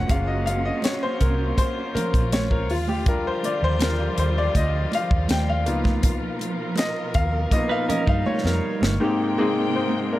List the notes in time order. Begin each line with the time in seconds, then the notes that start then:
Already playing: F#3 G#3 A#3 C#4 F4 A#4 C5 C#5 D#5 F#5
0.08 F#1 G#3 A#3 F4 F5, kick, closed hi-hat, muted conga
0.27 D#5
0.46 F5, closed hi-hat, muted conga
0.65 D#5
0.82 C#5, snare, closed hi-hat, high conga
1.03 C5
1.21 C2 A#4, kick, closed hi-hat
1.57 C5, kick, closed hi-hat, muted conga
1.95 A#4, muted fingered electric bass stroke, closed hi-hat, muted conga, low conga
2.14 A#1, kick, closed hi-hat
2.32 C#5, snare, closed hi-hat, high conga
2.51 A#4, kick
2.68 D#2 D3 F3 G3 F4, open hi-hat
2.88 G4, high conga
3.06 G3 D4 F4 A#4, kick, closed hi-hat, muted conga
3.27 C5
3.43 D5, closed hi-hat, muted conga
3.63 D#2 C5
3.79 A#4, snare, closed hi-hat, high conga
4.18 D#2 C5, closed hi-hat
4.38 D5
4.55 D2 D#5, kick, closed hi-hat, muted conga
4.92 F5, closed hi-hat, muted conga
5.11 D#2, kick
5.28 D#2 G5, snare, closed hi-hat, high conga
5.49 F5
5.66 C#2 B2 A#3 B3 D#4 F4 A#4, closed hi-hat
5.84 kick, snare, high conga
6.03 kick, closed hi-hat, muted conga
6.39 closed hi-hat, muted conga
6.76 D#5, snare, closed hi-hat, high conga
7.14 D#2 F5, kick, closed hi-hat
7.51 A#3 B3 D#4 F4 D#5, kick, closed hi-hat, muted conga
7.69 D#4 B4 F5
7.89 C#4 A#4 D#5, muted fingered electric bass stroke, closed hi-hat, muted conga, low conga
8.06 G2 G3 D#4 F5, kick
8.26 C#5, muted fingered electric bass stroke, high conga
8.44 F2 A#4, snare
8.81 G1, snare, high conga
8.98 G#2 C3 G#3 A#3 C4 D#4 G4 G5
9.38 G#2 A#3 C4 D#4 G#4
9.76 D#4 C5
10.13 D4 A#4